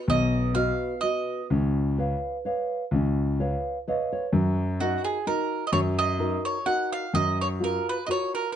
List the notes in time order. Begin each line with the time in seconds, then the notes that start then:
0.08 B1 B3 D#5
0.55 F#4 B4 D#5 F5
1.01 F#4 B4 D#5
1.50 C#2 C#4
1.98 B4 C#5 F5
2.45 B4 C#5 F5
2.91 C#2 C#4
3.40 B4 C#5 F5
3.88 B4 C#5 D#5 F5
4.12 C#5
4.33 F#2 F#3
4.80 D#4 F#4 A#4
5.05 G#4
5.27 D#4 F#4 A#4
5.67 D#5
5.72 F#2 F#3 C#5
5.99 D#5
6.19 D#4 F#4 A#4
6.45 C#5
6.66 D#4 F#4 A#4 F#5
6.93 F5
7.14 F#2 F#3 D#5
7.41 C#5
7.60 F4 F#4 A#4
7.89 B4
8.06 F4 F#4 A#4 D#5
8.11 C#5
8.35 A#4
8.52 A#4